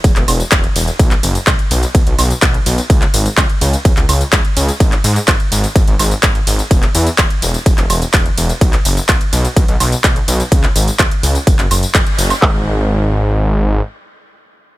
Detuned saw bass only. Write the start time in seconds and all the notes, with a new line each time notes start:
0.04 E1
0.16 E1
0.28 E1
0.52 E1
0.76 E1
0.99 B1
1.23 F#1
1.47 B1
1.71 B1
1.95 B1
2.07 B1
2.18 B1
2.42 B1
2.66 B1
2.90 C#2
3.14 G#1
3.38 C#2
3.61 C#2
3.85 C#2
3.97 C#2
4.09 C#2
4.33 C#2
4.57 C#2
4.80 G#1
5.04 G#2
5.28 G#1
5.52 G#1
5.76 G#1
5.88 G#1
5.99 G#1
6.23 G#1
6.47 G#1
6.71 E1
6.95 E2
7.18 E1
7.42 E1
7.66 E1
7.78 E1
7.90 E1
8.14 E1
8.37 E1
8.61 B1
8.85 F#1
9.09 B1
9.33 B1
9.56 B1
9.68 B1
9.80 B1
10.04 B1
10.28 B1
10.52 C#2
10.76 G#1
10.99 C#2
11.23 C#2
11.47 F#1
11.59 F#1
11.71 F#1
11.95 F#1
12.18 F#1
12.42 G#1